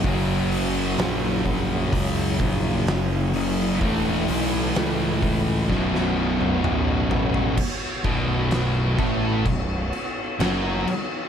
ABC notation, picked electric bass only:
X:1
M:4/4
L:1/8
Q:1/4=64
K:F#phr
V:1 name="Picked electric bass" clef=bass
F,,,2 ^A,,, A,,, C,, A,,, F,,,2 | E,,, B,,, C,,2 B,,,,2 A,,,2 | z B,,,,2 A,,, B,,,, z F,,, z |]